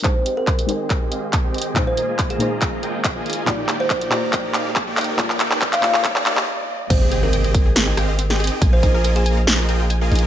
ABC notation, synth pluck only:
X:1
M:4/4
L:1/8
Q:"Swing 16ths" 1/4=140
K:Ablyd
V:1 name="Synth pluck"
[A,EGBc]3 [A,EBc]4- [A,EBc] | [B,,B,EAc]3 [B,,B,EAc]4- [B,,B,EAc] | [B,,B,FGd]3 [B,,B,FGd]4- [B,,B,FGd] | [B,,B,FGd]3 [B,,B,FGd]4- [B,,B,FGd] |
z8 | z8 |]